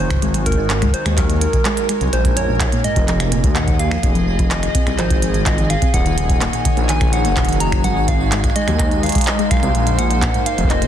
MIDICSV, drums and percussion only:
0, 0, Header, 1, 2, 480
1, 0, Start_track
1, 0, Tempo, 476190
1, 226, Time_signature, 4, 2, 24, 8
1, 10960, End_track
2, 0, Start_track
2, 0, Title_t, "Drums"
2, 105, Note_on_c, 9, 36, 101
2, 106, Note_on_c, 9, 26, 85
2, 106, Note_on_c, 9, 42, 41
2, 135, Note_off_c, 9, 36, 0
2, 135, Note_on_c, 9, 36, 86
2, 165, Note_off_c, 9, 36, 0
2, 165, Note_on_c, 9, 36, 68
2, 195, Note_off_c, 9, 36, 0
2, 195, Note_on_c, 9, 36, 56
2, 206, Note_off_c, 9, 26, 0
2, 206, Note_off_c, 9, 42, 0
2, 225, Note_off_c, 9, 36, 0
2, 225, Note_on_c, 9, 36, 45
2, 225, Note_on_c, 9, 42, 68
2, 256, Note_off_c, 9, 36, 0
2, 256, Note_on_c, 9, 36, 37
2, 286, Note_off_c, 9, 36, 0
2, 286, Note_on_c, 9, 36, 31
2, 316, Note_off_c, 9, 36, 0
2, 316, Note_on_c, 9, 36, 25
2, 326, Note_off_c, 9, 42, 0
2, 346, Note_on_c, 9, 42, 44
2, 416, Note_off_c, 9, 36, 0
2, 447, Note_off_c, 9, 42, 0
2, 466, Note_on_c, 9, 36, 56
2, 466, Note_on_c, 9, 42, 98
2, 506, Note_off_c, 9, 36, 0
2, 506, Note_on_c, 9, 36, 76
2, 526, Note_off_c, 9, 42, 0
2, 526, Note_on_c, 9, 42, 41
2, 546, Note_off_c, 9, 36, 0
2, 546, Note_on_c, 9, 36, 99
2, 627, Note_off_c, 9, 42, 0
2, 646, Note_off_c, 9, 36, 0
2, 705, Note_on_c, 9, 39, 122
2, 705, Note_on_c, 9, 42, 68
2, 806, Note_off_c, 9, 39, 0
2, 806, Note_off_c, 9, 42, 0
2, 826, Note_on_c, 9, 26, 39
2, 826, Note_on_c, 9, 36, 49
2, 826, Note_on_c, 9, 42, 44
2, 856, Note_off_c, 9, 36, 0
2, 856, Note_on_c, 9, 36, 61
2, 886, Note_off_c, 9, 36, 0
2, 886, Note_on_c, 9, 36, 78
2, 916, Note_off_c, 9, 36, 0
2, 916, Note_on_c, 9, 36, 90
2, 927, Note_off_c, 9, 26, 0
2, 927, Note_off_c, 9, 42, 0
2, 946, Note_on_c, 9, 42, 95
2, 1017, Note_off_c, 9, 36, 0
2, 1047, Note_off_c, 9, 42, 0
2, 1066, Note_on_c, 9, 26, 63
2, 1066, Note_on_c, 9, 42, 42
2, 1167, Note_off_c, 9, 26, 0
2, 1167, Note_off_c, 9, 42, 0
2, 1186, Note_on_c, 9, 36, 121
2, 1186, Note_on_c, 9, 39, 63
2, 1186, Note_on_c, 9, 42, 69
2, 1287, Note_off_c, 9, 36, 0
2, 1287, Note_off_c, 9, 39, 0
2, 1287, Note_off_c, 9, 42, 0
2, 1306, Note_on_c, 9, 42, 41
2, 1407, Note_off_c, 9, 42, 0
2, 1426, Note_on_c, 9, 42, 92
2, 1527, Note_off_c, 9, 42, 0
2, 1546, Note_on_c, 9, 36, 111
2, 1546, Note_on_c, 9, 42, 42
2, 1647, Note_off_c, 9, 36, 0
2, 1647, Note_off_c, 9, 42, 0
2, 1666, Note_on_c, 9, 39, 123
2, 1666, Note_on_c, 9, 42, 70
2, 1767, Note_off_c, 9, 39, 0
2, 1767, Note_off_c, 9, 42, 0
2, 1786, Note_on_c, 9, 42, 41
2, 1887, Note_off_c, 9, 42, 0
2, 1906, Note_on_c, 9, 26, 38
2, 1906, Note_on_c, 9, 42, 100
2, 2007, Note_off_c, 9, 26, 0
2, 2007, Note_off_c, 9, 42, 0
2, 2026, Note_on_c, 9, 42, 41
2, 2127, Note_off_c, 9, 42, 0
2, 2146, Note_on_c, 9, 42, 67
2, 2247, Note_off_c, 9, 42, 0
2, 2266, Note_on_c, 9, 36, 115
2, 2267, Note_on_c, 9, 42, 42
2, 2367, Note_off_c, 9, 36, 0
2, 2367, Note_off_c, 9, 42, 0
2, 2386, Note_on_c, 9, 42, 97
2, 2487, Note_off_c, 9, 42, 0
2, 2626, Note_on_c, 9, 36, 127
2, 2626, Note_on_c, 9, 39, 126
2, 2626, Note_on_c, 9, 42, 71
2, 2727, Note_off_c, 9, 36, 0
2, 2727, Note_off_c, 9, 39, 0
2, 2727, Note_off_c, 9, 42, 0
2, 2746, Note_on_c, 9, 42, 41
2, 2847, Note_off_c, 9, 42, 0
2, 2866, Note_on_c, 9, 42, 96
2, 2967, Note_off_c, 9, 42, 0
2, 2986, Note_on_c, 9, 36, 110
2, 2986, Note_on_c, 9, 42, 41
2, 3087, Note_off_c, 9, 36, 0
2, 3087, Note_off_c, 9, 42, 0
2, 3106, Note_on_c, 9, 39, 63
2, 3106, Note_on_c, 9, 42, 67
2, 3207, Note_off_c, 9, 39, 0
2, 3207, Note_off_c, 9, 42, 0
2, 3226, Note_on_c, 9, 26, 58
2, 3226, Note_on_c, 9, 42, 41
2, 3327, Note_off_c, 9, 26, 0
2, 3327, Note_off_c, 9, 42, 0
2, 3346, Note_on_c, 9, 42, 93
2, 3447, Note_off_c, 9, 42, 0
2, 3466, Note_on_c, 9, 36, 126
2, 3466, Note_on_c, 9, 42, 40
2, 3567, Note_off_c, 9, 36, 0
2, 3567, Note_off_c, 9, 42, 0
2, 3586, Note_on_c, 9, 39, 127
2, 3586, Note_on_c, 9, 42, 67
2, 3686, Note_off_c, 9, 39, 0
2, 3686, Note_off_c, 9, 42, 0
2, 3706, Note_on_c, 9, 36, 113
2, 3706, Note_on_c, 9, 42, 40
2, 3806, Note_off_c, 9, 42, 0
2, 3807, Note_off_c, 9, 36, 0
2, 3825, Note_on_c, 9, 42, 97
2, 3926, Note_off_c, 9, 42, 0
2, 3946, Note_on_c, 9, 26, 77
2, 4046, Note_off_c, 9, 26, 0
2, 4066, Note_on_c, 9, 36, 123
2, 4066, Note_on_c, 9, 42, 65
2, 4167, Note_off_c, 9, 36, 0
2, 4167, Note_off_c, 9, 42, 0
2, 4186, Note_on_c, 9, 42, 39
2, 4287, Note_off_c, 9, 42, 0
2, 4426, Note_on_c, 9, 36, 109
2, 4426, Note_on_c, 9, 42, 37
2, 4527, Note_off_c, 9, 36, 0
2, 4527, Note_off_c, 9, 42, 0
2, 4546, Note_on_c, 9, 39, 123
2, 4546, Note_on_c, 9, 42, 67
2, 4647, Note_off_c, 9, 39, 0
2, 4647, Note_off_c, 9, 42, 0
2, 4666, Note_on_c, 9, 26, 36
2, 4666, Note_on_c, 9, 42, 40
2, 4767, Note_off_c, 9, 26, 0
2, 4767, Note_off_c, 9, 42, 0
2, 4786, Note_on_c, 9, 36, 127
2, 4786, Note_on_c, 9, 42, 92
2, 4886, Note_off_c, 9, 36, 0
2, 4887, Note_off_c, 9, 42, 0
2, 4906, Note_on_c, 9, 26, 58
2, 4906, Note_on_c, 9, 42, 39
2, 5007, Note_off_c, 9, 26, 0
2, 5007, Note_off_c, 9, 42, 0
2, 5026, Note_on_c, 9, 39, 63
2, 5026, Note_on_c, 9, 42, 67
2, 5127, Note_off_c, 9, 39, 0
2, 5127, Note_off_c, 9, 42, 0
2, 5146, Note_on_c, 9, 36, 107
2, 5146, Note_on_c, 9, 42, 39
2, 5246, Note_off_c, 9, 36, 0
2, 5247, Note_off_c, 9, 42, 0
2, 5266, Note_on_c, 9, 42, 90
2, 5367, Note_off_c, 9, 42, 0
2, 5386, Note_on_c, 9, 42, 39
2, 5487, Note_off_c, 9, 42, 0
2, 5506, Note_on_c, 9, 36, 121
2, 5506, Note_on_c, 9, 39, 123
2, 5506, Note_on_c, 9, 42, 67
2, 5606, Note_off_c, 9, 36, 0
2, 5607, Note_off_c, 9, 39, 0
2, 5607, Note_off_c, 9, 42, 0
2, 5626, Note_on_c, 9, 42, 39
2, 5727, Note_off_c, 9, 42, 0
2, 5746, Note_on_c, 9, 26, 36
2, 5746, Note_on_c, 9, 42, 94
2, 5847, Note_off_c, 9, 26, 0
2, 5847, Note_off_c, 9, 42, 0
2, 5866, Note_on_c, 9, 36, 113
2, 5866, Note_on_c, 9, 42, 39
2, 5966, Note_off_c, 9, 36, 0
2, 5967, Note_off_c, 9, 42, 0
2, 5986, Note_on_c, 9, 36, 120
2, 5986, Note_on_c, 9, 42, 62
2, 6086, Note_off_c, 9, 36, 0
2, 6087, Note_off_c, 9, 42, 0
2, 6106, Note_on_c, 9, 42, 39
2, 6207, Note_off_c, 9, 42, 0
2, 6226, Note_on_c, 9, 42, 88
2, 6327, Note_off_c, 9, 42, 0
2, 6346, Note_on_c, 9, 36, 109
2, 6346, Note_on_c, 9, 42, 38
2, 6446, Note_off_c, 9, 36, 0
2, 6447, Note_off_c, 9, 42, 0
2, 6466, Note_on_c, 9, 39, 118
2, 6466, Note_on_c, 9, 42, 63
2, 6567, Note_off_c, 9, 39, 0
2, 6567, Note_off_c, 9, 42, 0
2, 6586, Note_on_c, 9, 42, 39
2, 6686, Note_off_c, 9, 42, 0
2, 6705, Note_on_c, 9, 42, 89
2, 6706, Note_on_c, 9, 36, 118
2, 6806, Note_off_c, 9, 36, 0
2, 6806, Note_off_c, 9, 42, 0
2, 6825, Note_on_c, 9, 42, 38
2, 6926, Note_off_c, 9, 42, 0
2, 6946, Note_on_c, 9, 39, 60
2, 6946, Note_on_c, 9, 42, 62
2, 7046, Note_off_c, 9, 39, 0
2, 7046, Note_off_c, 9, 42, 0
2, 7066, Note_on_c, 9, 26, 59
2, 7066, Note_on_c, 9, 36, 104
2, 7066, Note_on_c, 9, 42, 37
2, 7166, Note_off_c, 9, 26, 0
2, 7166, Note_off_c, 9, 36, 0
2, 7166, Note_off_c, 9, 42, 0
2, 7185, Note_on_c, 9, 42, 87
2, 7286, Note_off_c, 9, 42, 0
2, 7306, Note_on_c, 9, 42, 38
2, 7406, Note_off_c, 9, 42, 0
2, 7426, Note_on_c, 9, 36, 120
2, 7426, Note_on_c, 9, 39, 121
2, 7426, Note_on_c, 9, 42, 61
2, 7506, Note_off_c, 9, 42, 0
2, 7506, Note_on_c, 9, 42, 48
2, 7527, Note_off_c, 9, 36, 0
2, 7527, Note_off_c, 9, 39, 0
2, 7545, Note_off_c, 9, 42, 0
2, 7545, Note_on_c, 9, 42, 39
2, 7586, Note_off_c, 9, 42, 0
2, 7586, Note_on_c, 9, 42, 41
2, 7665, Note_off_c, 9, 42, 0
2, 7665, Note_on_c, 9, 42, 89
2, 7766, Note_off_c, 9, 42, 0
2, 7785, Note_on_c, 9, 26, 79
2, 7785, Note_on_c, 9, 42, 39
2, 7786, Note_on_c, 9, 36, 111
2, 7886, Note_off_c, 9, 26, 0
2, 7886, Note_off_c, 9, 42, 0
2, 7887, Note_off_c, 9, 36, 0
2, 7905, Note_on_c, 9, 42, 64
2, 8006, Note_off_c, 9, 42, 0
2, 8145, Note_on_c, 9, 42, 87
2, 8146, Note_on_c, 9, 36, 115
2, 8246, Note_off_c, 9, 42, 0
2, 8247, Note_off_c, 9, 36, 0
2, 8386, Note_on_c, 9, 39, 117
2, 8386, Note_on_c, 9, 42, 65
2, 8486, Note_off_c, 9, 39, 0
2, 8486, Note_off_c, 9, 42, 0
2, 8506, Note_on_c, 9, 26, 36
2, 8506, Note_on_c, 9, 36, 106
2, 8506, Note_on_c, 9, 42, 38
2, 8566, Note_off_c, 9, 26, 0
2, 8566, Note_on_c, 9, 26, 29
2, 8606, Note_off_c, 9, 42, 0
2, 8607, Note_off_c, 9, 36, 0
2, 8626, Note_off_c, 9, 26, 0
2, 8626, Note_on_c, 9, 26, 24
2, 8626, Note_on_c, 9, 42, 91
2, 8686, Note_off_c, 9, 26, 0
2, 8686, Note_on_c, 9, 26, 19
2, 8727, Note_off_c, 9, 42, 0
2, 8746, Note_off_c, 9, 26, 0
2, 8746, Note_on_c, 9, 26, 61
2, 8746, Note_on_c, 9, 42, 38
2, 8847, Note_off_c, 9, 26, 0
2, 8847, Note_off_c, 9, 42, 0
2, 8866, Note_on_c, 9, 36, 117
2, 8866, Note_on_c, 9, 39, 59
2, 8866, Note_on_c, 9, 42, 64
2, 8966, Note_off_c, 9, 39, 0
2, 8966, Note_off_c, 9, 42, 0
2, 8967, Note_off_c, 9, 36, 0
2, 8986, Note_on_c, 9, 42, 38
2, 9087, Note_off_c, 9, 42, 0
2, 9105, Note_on_c, 9, 42, 38
2, 9136, Note_off_c, 9, 42, 0
2, 9136, Note_on_c, 9, 42, 44
2, 9166, Note_off_c, 9, 42, 0
2, 9166, Note_on_c, 9, 42, 50
2, 9196, Note_off_c, 9, 42, 0
2, 9196, Note_on_c, 9, 42, 57
2, 9225, Note_off_c, 9, 42, 0
2, 9225, Note_on_c, 9, 42, 62
2, 9226, Note_on_c, 9, 36, 104
2, 9256, Note_off_c, 9, 42, 0
2, 9256, Note_on_c, 9, 42, 67
2, 9286, Note_off_c, 9, 42, 0
2, 9286, Note_on_c, 9, 42, 72
2, 9316, Note_off_c, 9, 42, 0
2, 9316, Note_on_c, 9, 42, 77
2, 9327, Note_off_c, 9, 36, 0
2, 9346, Note_off_c, 9, 42, 0
2, 9346, Note_on_c, 9, 39, 117
2, 9346, Note_on_c, 9, 42, 64
2, 9447, Note_off_c, 9, 39, 0
2, 9447, Note_off_c, 9, 42, 0
2, 9466, Note_on_c, 9, 42, 37
2, 9567, Note_off_c, 9, 42, 0
2, 9586, Note_on_c, 9, 26, 36
2, 9586, Note_on_c, 9, 36, 119
2, 9586, Note_on_c, 9, 42, 89
2, 9616, Note_off_c, 9, 26, 0
2, 9616, Note_on_c, 9, 26, 29
2, 9646, Note_off_c, 9, 26, 0
2, 9646, Note_on_c, 9, 26, 24
2, 9676, Note_off_c, 9, 26, 0
2, 9676, Note_on_c, 9, 26, 20
2, 9686, Note_off_c, 9, 42, 0
2, 9687, Note_off_c, 9, 36, 0
2, 9706, Note_on_c, 9, 42, 39
2, 9777, Note_off_c, 9, 26, 0
2, 9807, Note_off_c, 9, 42, 0
2, 9826, Note_on_c, 9, 42, 64
2, 9927, Note_off_c, 9, 42, 0
2, 9946, Note_on_c, 9, 42, 39
2, 10047, Note_off_c, 9, 42, 0
2, 10066, Note_on_c, 9, 42, 93
2, 10167, Note_off_c, 9, 42, 0
2, 10186, Note_on_c, 9, 42, 39
2, 10287, Note_off_c, 9, 42, 0
2, 10306, Note_on_c, 9, 36, 115
2, 10306, Note_on_c, 9, 39, 113
2, 10306, Note_on_c, 9, 42, 67
2, 10407, Note_off_c, 9, 36, 0
2, 10407, Note_off_c, 9, 39, 0
2, 10407, Note_off_c, 9, 42, 0
2, 10426, Note_on_c, 9, 42, 39
2, 10527, Note_off_c, 9, 42, 0
2, 10546, Note_on_c, 9, 42, 90
2, 10647, Note_off_c, 9, 42, 0
2, 10666, Note_on_c, 9, 42, 39
2, 10726, Note_on_c, 9, 36, 99
2, 10767, Note_off_c, 9, 42, 0
2, 10786, Note_on_c, 9, 39, 58
2, 10786, Note_on_c, 9, 42, 66
2, 10827, Note_off_c, 9, 36, 0
2, 10887, Note_off_c, 9, 39, 0
2, 10887, Note_off_c, 9, 42, 0
2, 10906, Note_on_c, 9, 42, 39
2, 10960, Note_off_c, 9, 42, 0
2, 10960, End_track
0, 0, End_of_file